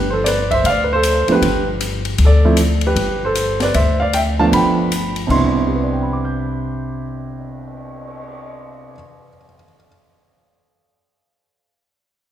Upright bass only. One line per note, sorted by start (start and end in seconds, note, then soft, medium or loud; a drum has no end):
0.00 0.61 G1 medium
0.64 1.24 D2 medium
1.28 muted upright bass stroke soft
1.42 2.16 G1 medium
2.19 2.93 D2 medium
2.96 3.70 G1 medium
3.75 4.49 D2 medium
4.52 5.26 G1 medium
5.29 8.91 C2 medium